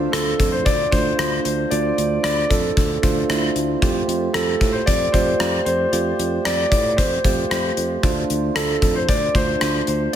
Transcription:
Already playing: synth keys A3 D4 F4 C5
0.12 fretless electric bass D2, grand piano A4, cross-stick, closed hi-hat
0.40 fretless electric bass F2, kick, closed hi-hat
0.52 grand piano C5
0.65 fretless electric bass D2, grand piano D5, kick, closed hi-hat
0.91 fretless electric bass D2, synth keys A3 D4 F4 C5, grand piano C5, kick, closed hi-hat
1.18 fretless electric bass D2, synth keys A3 D4 F4 C5, cross-stick, closed hi-hat
1.45 fretless electric bass D2, grand piano C5, closed hi-hat
1.70 fretless electric bass D2, synth keys A3 D4 F4 C5, grand piano D5, closed hi-hat
1.98 fretless electric bass D2, closed hi-hat
2.23 fretless electric bass D2, grand piano D5, cross-stick, closed hi-hat
2.49 fretless electric bass F2, grand piano A4, kick, closed hi-hat
2.77 fretless electric bass D2, kick, closed hi-hat
3.02 fretless electric bass D2, synth keys A3 D4 F4 C5, kick, closed hi-hat
3.29 fretless electric bass D2, synth keys A3 D4 E4 C5, cross-stick, closed hi-hat
3.36 synth keys F4
3.56 fretless electric bass D2, closed hi-hat
3.82 fretless electric bass F2, synth keys A3 F4 G4 C5, kick, closed hi-hat
4.08 fretless electric bass F2, closed hi-hat
4.33 fretless electric bass F2, grand piano A4, cross-stick, closed hi-hat
4.61 fretless electric bass A2, kick, closed hi-hat
4.72 grand piano C5
4.86 fretless electric bass F2, grand piano D5, kick, closed hi-hat
5.12 fretless electric bass F2, synth keys A3 F4 G4 D5, grand piano C5, kick, closed hi-hat
5.40 fretless electric bass F2, synth keys A3 F4 G4 C5, cross-stick, closed hi-hat
5.65 fretless electric bass F2, grand piano C5, closed hi-hat
5.92 fretless electric bass F2, synth keys A3 F4 G4 C5, closed hi-hat
6.19 fretless electric bass F2, closed hi-hat
6.45 fretless electric bass F2, grand piano D5, cross-stick, closed hi-hat
6.70 fretless electric bass A2, grand piano D5, kick, closed hi-hat
6.97 fretless electric bass F2, grand piano C5, kick, closed hi-hat
7.25 fretless electric bass F2, synth keys A3 F4 G4 C5, kick, closed hi-hat
7.50 fretless electric bass F2, synth keys A3 F4 G4 C5, grand piano C5, cross-stick, closed hi-hat
7.77 fretless electric bass F2, closed hi-hat
8.03 fretless electric bass D2, synth keys A3 D4 F4 C5, kick, closed hi-hat
8.30 fretless electric bass D2, closed hi-hat
8.55 fretless electric bass D2, grand piano A4, cross-stick, closed hi-hat
8.82 fretless electric bass F2, kick, closed hi-hat
8.95 grand piano C5
9.09 fretless electric bass D2, grand piano D5, kick, closed hi-hat
9.34 fretless electric bass D2, synth keys A3 D4 F4 C5, grand piano C5, kick, closed hi-hat
9.61 fretless electric bass D2, synth keys A3 D4 F4 C5, cross-stick, closed hi-hat
9.87 fretless electric bass D2, grand piano C5, closed hi-hat

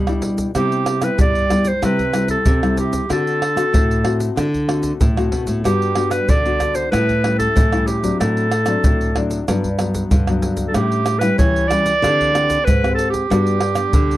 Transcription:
Already playing: nylon-string guitar B2 G3
0.07 nylon-string guitar G3 D4 E4, pandeiro, tamborim, shaker
0.22 pandeiro, shaker, surdo
0.38 pandeiro, shaker, surdo
0.55 nylon-string guitar C3 G3 B3 E4, clarinet G4, pandeiro, tamborim, shaker, surdo
0.72 pandeiro, shaker
0.86 pandeiro, tamborim, shaker
1.02 nylon-string guitar G3 B3 E4, clarinet B4, pandeiro, tamborim, shaker
1.18 nylon-string guitar G2 G3, clarinet D5, pandeiro, shaker, surdo
1.35 pandeiro, shaker
1.50 nylon-string guitar G3 B3 E4, pandeiro, tamborim, shaker, surdo
1.65 clarinet C5, pandeiro, shaker
1.82 nylon-string guitar C3 G3 A3 E4, clarinet B4, pandeiro, tamborim, shaker, surdo
1.99 pandeiro, shaker, surdo
2.13 nylon-string guitar G3 A3 E4, pandeiro, tamborim, shaker
2.28 clarinet A4, pandeiro, shaker, surdo
2.46 nylon-string guitar C3, pandeiro, shaker, surdo
2.62 nylon-string guitar G3 A3 E4, pandeiro, tamborim, shaker
2.77 clarinet G4, pandeiro, shaker, surdo
2.93 pandeiro, shaker, surdo
3.09 nylon-string guitar D3 A3 C4 F#4, clarinet A4, pandeiro, tamborim, shaker, surdo
3.27 pandeiro, shaker
3.42 pandeiro, tamborim
3.55 nylon-string guitar A3 C4 F#4, pandeiro, tamborim, shaker
3.73 nylon-string guitar A2, pandeiro, shaker, surdo
3.91 pandeiro, shaker
4.04 nylon-string guitar A3 C4 F#4, pandeiro, tamborim, surdo
4.20 pandeiro, shaker
4.36 nylon-string guitar D3, pandeiro, tamborim, shaker, surdo
4.54 pandeiro, shaker, surdo
4.68 nylon-string guitar A3 C4 F#4, pandeiro, tamborim
4.83 pandeiro, shaker, surdo
5.01 nylon-string guitar A2, pandeiro, shaker, surdo
5.17 nylon-string guitar A3 C4 F#4, pandeiro, tamborim, shaker
5.32 nylon-string guitar B2, pandeiro, surdo
5.47 nylon-string guitar A2, pandeiro, shaker, surdo
5.64 nylon-string guitar G2 G3 B3 D4 F#4, clarinet G4, pandeiro, tamborim, shaker, surdo
5.82 pandeiro, shaker
5.95 nylon-string guitar B3 D4 F#4, pandeiro, tamborim
6.11 clarinet B4, pandeiro, tamborim, shaker
6.29 nylon-string guitar D3, clarinet D5, pandeiro, shaker, surdo
6.45 nylon-string guitar B3 D4 F#4, pandeiro, shaker
6.60 pandeiro, tamborim, shaker, surdo
6.75 clarinet C5, pandeiro, shaker
6.91 nylon-string guitar A2 G3 C#4 E4, clarinet B4, pandeiro, tamborim, shaker, surdo
7.09 pandeiro, shaker, surdo
7.23 nylon-string guitar G3 C#4 E4, pandeiro, tamborim
7.39 clarinet A4, pandeiro, shaker, surdo
7.56 nylon-string guitar A2 E3, pandeiro, shaker, surdo
7.72 nylon-string guitar G3 C#4 E4, pandeiro, tamborim, shaker
7.87 clarinet G4, pandeiro, shaker
8.03 nylon-string guitar F#3 C4 D4, pandeiro, shaker, surdo
8.20 nylon-string guitar A2, clarinet A4, pandeiro, tamborim, shaker, surdo
8.37 pandeiro, shaker
8.51 pandeiro, tamborim, shaker
8.66 nylon-string guitar F#3 C4 D4, pandeiro, tamborim, shaker
8.84 nylon-string guitar A2, pandeiro, shaker, surdo
9.01 pandeiro, shaker
9.15 nylon-string guitar F#3 C4 D4, pandeiro, tamborim, surdo
9.31 pandeiro, shaker
9.48 nylon-string guitar G2 F#3 B3 D4, pandeiro, tamborim, shaker, surdo
9.64 pandeiro, shaker, surdo
9.79 nylon-string guitar F#3 B3 D4, pandeiro, tamborim, shaker
9.94 pandeiro, shaker, surdo
10.11 nylon-string guitar G2 D3, pandeiro, shaker, surdo
10.27 nylon-string guitar F#3 B3 D4, pandeiro, tamborim, shaker
10.42 pandeiro, shaker, surdo
10.57 pandeiro, shaker, surdo
10.68 clarinet A4
10.74 nylon-string guitar A2 G3 C#4 E4, clarinet G4, pandeiro, tamborim, shaker, surdo
10.92 pandeiro, shaker
11.06 pandeiro, tamborim, shaker
11.19 nylon-string guitar G3 C#4 E4, clarinet B4, pandeiro, tamborim, shaker
11.38 nylon-string guitar E3, clarinet C#5, pandeiro, shaker, surdo
11.56 pandeiro, shaker
11.68 nylon-string guitar G3 C#4 E4, clarinet D5, pandeiro, tamborim, shaker, surdo
11.86 pandeiro, shaker
12.03 nylon-string guitar D3 A3 C4 G4, pandeiro, tamborim, shaker, surdo
12.21 pandeiro, shaker, surdo
12.34 nylon-string guitar A3 C4 G4, pandeiro, tamborim, shaker
12.50 pandeiro, shaker, surdo
12.65 nylon-string guitar G#2, clarinet B4, pandeiro, shaker, surdo
12.84 nylon-string guitar C4 G4, pandeiro, tamborim, shaker
12.95 clarinet A4, pandeiro, shaker
13.10 clarinet G4, pandeiro, shaker, surdo
13.30 nylon-string guitar G2 G3 B3 D4 F#4, pandeiro, tamborim, shaker, surdo
13.47 pandeiro, shaker
13.61 pandeiro, tamborim
13.75 nylon-string guitar B3 D4, pandeiro, tamborim, shaker
13.93 nylon-string guitar D3, pandeiro, shaker, surdo
14.11 pandeiro, shaker

